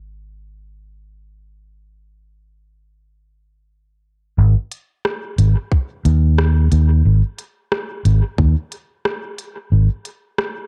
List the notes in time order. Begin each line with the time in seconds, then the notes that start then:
Already playing: G#1
4.38 G#1
4.71 closed hi-hat
5.05 cross-stick
5.38 G#1, closed hi-hat
5.72 kick
6.05 D#2, closed hi-hat
6.38 cross-stick
6.72 D#2, closed hi-hat
7.05 G#1
7.39 closed hi-hat
7.72 cross-stick
8.05 G#1, closed hi-hat
8.38 D#2, kick
8.72 closed hi-hat
9.05 cross-stick
9.38 closed hi-hat
9.72 G#1
10.05 closed hi-hat
10.38 cross-stick